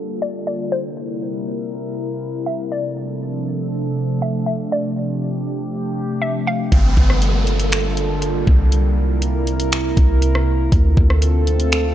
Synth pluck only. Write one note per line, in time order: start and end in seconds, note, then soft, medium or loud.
0.00 0.18 C5 medium
0.22 0.46 D5 medium
0.47 0.71 D5 medium
0.72 2.43 C5 loud
2.46 2.70 E5 medium
2.72 4.18 D5 loud
4.22 4.45 E5 medium
4.46 4.70 E5 medium
4.72 6.18 D5 loud
6.22 6.46 E5 medium
6.47 6.71 F5 medium